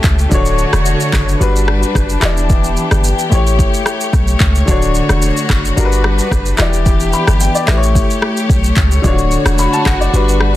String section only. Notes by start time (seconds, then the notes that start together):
Already playing: A3 C#4 G4
0.31 D3 F#4 C#5
1.41 G3 D4 F#4 B4
2.23 E3 B3 G4
3.32 A3 C#5
4.68 D3 F#4
5.77 G3 D4 B4
6.59 E3 B3 D4 G4
7.68 A3 G4 C#5
9.04 D3 F#4
10.13 G3 D4 B4